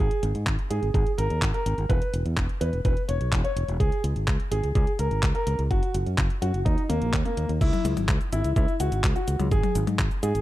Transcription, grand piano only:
0, 0, Header, 1, 2, 480
1, 0, Start_track
1, 0, Tempo, 476190
1, 1911, Time_signature, 4, 2, 24, 8
1, 10497, End_track
2, 0, Start_track
2, 0, Title_t, "Grand piano"
2, 0, Program_c, 0, 0
2, 0, Note_on_c, 0, 68, 92
2, 219, Note_off_c, 0, 68, 0
2, 709, Note_on_c, 0, 68, 83
2, 863, Note_off_c, 0, 68, 0
2, 952, Note_on_c, 0, 68, 84
2, 1105, Note_off_c, 0, 68, 0
2, 1189, Note_on_c, 0, 70, 94
2, 1420, Note_off_c, 0, 70, 0
2, 1551, Note_on_c, 0, 70, 91
2, 1781, Note_off_c, 0, 70, 0
2, 1909, Note_on_c, 0, 71, 91
2, 2140, Note_off_c, 0, 71, 0
2, 2629, Note_on_c, 0, 71, 87
2, 2783, Note_off_c, 0, 71, 0
2, 2871, Note_on_c, 0, 71, 86
2, 3024, Note_off_c, 0, 71, 0
2, 3108, Note_on_c, 0, 73, 92
2, 3340, Note_off_c, 0, 73, 0
2, 3470, Note_on_c, 0, 73, 90
2, 3700, Note_off_c, 0, 73, 0
2, 3829, Note_on_c, 0, 68, 95
2, 4060, Note_off_c, 0, 68, 0
2, 4550, Note_on_c, 0, 68, 88
2, 4704, Note_off_c, 0, 68, 0
2, 4790, Note_on_c, 0, 68, 86
2, 4944, Note_off_c, 0, 68, 0
2, 5030, Note_on_c, 0, 70, 90
2, 5260, Note_off_c, 0, 70, 0
2, 5389, Note_on_c, 0, 70, 91
2, 5620, Note_off_c, 0, 70, 0
2, 5751, Note_on_c, 0, 66, 101
2, 5981, Note_off_c, 0, 66, 0
2, 6469, Note_on_c, 0, 66, 88
2, 6623, Note_off_c, 0, 66, 0
2, 6706, Note_on_c, 0, 63, 90
2, 6862, Note_off_c, 0, 63, 0
2, 6948, Note_on_c, 0, 58, 97
2, 7179, Note_off_c, 0, 58, 0
2, 7310, Note_on_c, 0, 58, 90
2, 7540, Note_off_c, 0, 58, 0
2, 7671, Note_on_c, 0, 64, 100
2, 7901, Note_off_c, 0, 64, 0
2, 8390, Note_on_c, 0, 64, 87
2, 8544, Note_off_c, 0, 64, 0
2, 8630, Note_on_c, 0, 64, 92
2, 8784, Note_off_c, 0, 64, 0
2, 8872, Note_on_c, 0, 66, 101
2, 9102, Note_off_c, 0, 66, 0
2, 9231, Note_on_c, 0, 66, 89
2, 9461, Note_off_c, 0, 66, 0
2, 9592, Note_on_c, 0, 68, 105
2, 9821, Note_off_c, 0, 68, 0
2, 10310, Note_on_c, 0, 68, 87
2, 10464, Note_off_c, 0, 68, 0
2, 10497, End_track
0, 0, End_of_file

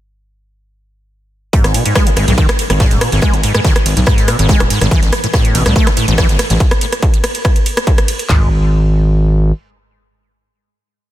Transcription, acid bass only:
0, 0, Header, 1, 2, 480
1, 0, Start_track
1, 0, Key_signature, 5, "minor"
1, 0, Tempo, 422535
1, 1740, Time_signature, 4, 2, 24, 8
1, 12623, End_track
2, 0, Start_track
2, 0, Title_t, "Acid bass"
2, 0, Program_c, 0, 38
2, 1741, Note_on_c, 0, 44, 82
2, 1982, Note_on_c, 0, 47, 99
2, 1999, Note_off_c, 0, 44, 0
2, 2085, Note_off_c, 0, 47, 0
2, 2107, Note_on_c, 0, 44, 76
2, 2201, Note_off_c, 0, 44, 0
2, 2220, Note_on_c, 0, 56, 98
2, 2346, Note_on_c, 0, 43, 82
2, 2363, Note_off_c, 0, 56, 0
2, 2384, Note_off_c, 0, 43, 0
2, 2459, Note_on_c, 0, 44, 76
2, 2564, Note_off_c, 0, 44, 0
2, 2585, Note_on_c, 0, 44, 96
2, 2648, Note_off_c, 0, 44, 0
2, 2700, Note_on_c, 0, 51, 106
2, 2804, Note_off_c, 0, 51, 0
2, 3066, Note_on_c, 0, 44, 77
2, 3104, Note_off_c, 0, 44, 0
2, 3182, Note_on_c, 0, 44, 86
2, 3421, Note_on_c, 0, 47, 97
2, 3438, Note_off_c, 0, 44, 0
2, 3524, Note_off_c, 0, 47, 0
2, 3547, Note_on_c, 0, 44, 73
2, 3641, Note_off_c, 0, 44, 0
2, 3663, Note_on_c, 0, 56, 103
2, 3788, Note_on_c, 0, 43, 78
2, 3805, Note_off_c, 0, 56, 0
2, 3825, Note_off_c, 0, 43, 0
2, 3902, Note_on_c, 0, 44, 74
2, 4005, Note_off_c, 0, 44, 0
2, 4028, Note_on_c, 0, 44, 108
2, 4090, Note_off_c, 0, 44, 0
2, 4141, Note_on_c, 0, 51, 96
2, 4245, Note_off_c, 0, 51, 0
2, 4508, Note_on_c, 0, 44, 73
2, 4545, Note_off_c, 0, 44, 0
2, 4622, Note_on_c, 0, 44, 87
2, 4861, Note_on_c, 0, 47, 107
2, 4878, Note_off_c, 0, 44, 0
2, 4965, Note_off_c, 0, 47, 0
2, 4988, Note_on_c, 0, 44, 76
2, 5081, Note_off_c, 0, 44, 0
2, 5102, Note_on_c, 0, 56, 107
2, 5227, Note_on_c, 0, 43, 78
2, 5244, Note_off_c, 0, 56, 0
2, 5264, Note_off_c, 0, 43, 0
2, 5342, Note_on_c, 0, 44, 76
2, 5445, Note_off_c, 0, 44, 0
2, 5468, Note_on_c, 0, 44, 102
2, 5530, Note_off_c, 0, 44, 0
2, 5582, Note_on_c, 0, 52, 104
2, 5685, Note_off_c, 0, 52, 0
2, 5947, Note_on_c, 0, 45, 78
2, 5984, Note_off_c, 0, 45, 0
2, 6062, Note_on_c, 0, 45, 83
2, 6301, Note_on_c, 0, 48, 103
2, 6318, Note_off_c, 0, 45, 0
2, 6404, Note_off_c, 0, 48, 0
2, 6426, Note_on_c, 0, 45, 76
2, 6521, Note_off_c, 0, 45, 0
2, 6542, Note_on_c, 0, 57, 109
2, 6667, Note_on_c, 0, 43, 77
2, 6684, Note_off_c, 0, 57, 0
2, 6704, Note_off_c, 0, 43, 0
2, 6782, Note_on_c, 0, 45, 80
2, 6885, Note_off_c, 0, 45, 0
2, 6908, Note_on_c, 0, 45, 99
2, 6970, Note_off_c, 0, 45, 0
2, 7021, Note_on_c, 0, 52, 104
2, 7125, Note_off_c, 0, 52, 0
2, 7388, Note_on_c, 0, 45, 78
2, 7425, Note_off_c, 0, 45, 0
2, 9422, Note_on_c, 0, 44, 96
2, 9645, Note_off_c, 0, 44, 0
2, 12623, End_track
0, 0, End_of_file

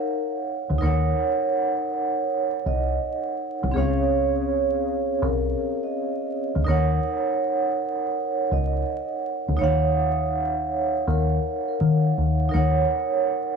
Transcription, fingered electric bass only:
0, 0, Header, 1, 2, 480
1, 0, Start_track
1, 0, Key_signature, -6, "minor"
1, 0, Tempo, 731707
1, 537, Time_signature, 4, 2, 24, 8
1, 8897, End_track
2, 0, Start_track
2, 0, Title_t, "Fingered electric bass"
2, 0, Program_c, 0, 33
2, 459, Note_on_c, 0, 38, 88
2, 527, Note_off_c, 0, 38, 0
2, 540, Note_on_c, 0, 39, 98
2, 743, Note_off_c, 0, 39, 0
2, 1744, Note_on_c, 0, 36, 82
2, 1945, Note_off_c, 0, 36, 0
2, 2383, Note_on_c, 0, 36, 97
2, 2450, Note_off_c, 0, 36, 0
2, 2464, Note_on_c, 0, 37, 100
2, 3394, Note_off_c, 0, 37, 0
2, 3426, Note_on_c, 0, 36, 93
2, 3627, Note_off_c, 0, 36, 0
2, 4301, Note_on_c, 0, 38, 85
2, 4368, Note_off_c, 0, 38, 0
2, 4381, Note_on_c, 0, 39, 108
2, 4584, Note_off_c, 0, 39, 0
2, 5585, Note_on_c, 0, 37, 90
2, 5786, Note_off_c, 0, 37, 0
2, 6221, Note_on_c, 0, 38, 89
2, 6288, Note_off_c, 0, 38, 0
2, 6306, Note_on_c, 0, 39, 90
2, 7235, Note_off_c, 0, 39, 0
2, 7265, Note_on_c, 0, 39, 92
2, 7466, Note_off_c, 0, 39, 0
2, 7746, Note_on_c, 0, 51, 96
2, 7946, Note_off_c, 0, 51, 0
2, 7989, Note_on_c, 0, 39, 74
2, 8188, Note_off_c, 0, 39, 0
2, 8229, Note_on_c, 0, 39, 103
2, 8428, Note_off_c, 0, 39, 0
2, 8897, End_track
0, 0, End_of_file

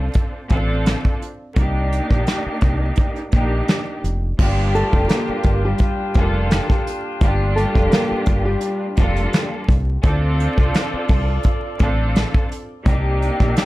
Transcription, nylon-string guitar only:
0, 0, Header, 1, 2, 480
1, 0, Start_track
1, 0, Key_signature, -2, "minor"
1, 0, Tempo, 705882
1, 1065, Time_signature, 4, 2, 24, 8
1, 9283, End_track
2, 0, Start_track
2, 0, Title_t, "Nylon-string guitar"
2, 0, Program_c, 0, 24
2, 3227, Note_on_c, 0, 69, 98
2, 3233, Note_on_c, 0, 57, 72
2, 3442, Note_off_c, 0, 69, 0
2, 3445, Note_off_c, 0, 57, 0
2, 3456, Note_on_c, 0, 70, 77
2, 3461, Note_on_c, 0, 58, 60
2, 3808, Note_off_c, 0, 70, 0
2, 3811, Note_off_c, 0, 58, 0
2, 3841, Note_on_c, 0, 67, 84
2, 3848, Note_on_c, 0, 55, 65
2, 4881, Note_off_c, 0, 67, 0
2, 4884, Note_off_c, 0, 55, 0
2, 5139, Note_on_c, 0, 69, 82
2, 5143, Note_on_c, 0, 57, 62
2, 5358, Note_off_c, 0, 69, 0
2, 5360, Note_off_c, 0, 57, 0
2, 5379, Note_on_c, 0, 70, 97
2, 5385, Note_on_c, 0, 58, 69
2, 5730, Note_off_c, 0, 70, 0
2, 5732, Note_off_c, 0, 58, 0
2, 5747, Note_on_c, 0, 67, 92
2, 5752, Note_on_c, 0, 55, 61
2, 6444, Note_off_c, 0, 67, 0
2, 6446, Note_off_c, 0, 55, 0
2, 9283, End_track
0, 0, End_of_file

